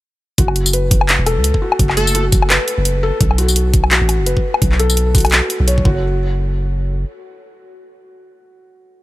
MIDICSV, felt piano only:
0, 0, Header, 1, 2, 480
1, 0, Start_track
1, 0, Key_signature, 3, "minor"
1, 0, Tempo, 352941
1, 520, Time_signature, 4, 2, 24, 8
1, 12279, End_track
2, 0, Start_track
2, 0, Title_t, "Felt piano"
2, 0, Program_c, 0, 0
2, 519, Note_on_c, 0, 66, 82
2, 749, Note_off_c, 0, 66, 0
2, 786, Control_c, 0, 64, 127
2, 1000, Note_on_c, 0, 71, 76
2, 1230, Note_off_c, 0, 71, 0
2, 1720, Note_on_c, 0, 69, 99
2, 1949, Note_off_c, 0, 69, 0
2, 2201, Note_on_c, 0, 66, 77
2, 2900, Note_off_c, 0, 66, 0
2, 2921, Note_on_c, 0, 66, 76
2, 3150, Note_off_c, 0, 66, 0
2, 3401, Note_on_c, 0, 71, 86
2, 3630, Note_off_c, 0, 71, 0
2, 4122, Note_on_c, 0, 69, 103
2, 4351, Note_off_c, 0, 69, 0
2, 4376, Control_c, 0, 64, 0
2, 4591, Control_c, 0, 64, 127
2, 4603, Note_on_c, 0, 66, 77
2, 5301, Note_off_c, 0, 66, 0
2, 5321, Note_on_c, 0, 66, 82
2, 5550, Note_off_c, 0, 66, 0
2, 5800, Note_on_c, 0, 71, 78
2, 6030, Note_off_c, 0, 71, 0
2, 6520, Note_on_c, 0, 69, 104
2, 6750, Note_off_c, 0, 69, 0
2, 7001, Note_on_c, 0, 66, 81
2, 7700, Note_off_c, 0, 66, 0
2, 7719, Note_on_c, 0, 73, 78
2, 7939, Note_off_c, 0, 73, 0
2, 7959, Note_on_c, 0, 66, 93
2, 7976, Control_c, 0, 64, 0
2, 8085, Control_c, 0, 64, 127
2, 8216, Control_c, 0, 64, 0
2, 8406, Note_off_c, 0, 66, 0
2, 8467, Control_c, 0, 64, 127
2, 12279, End_track
0, 0, End_of_file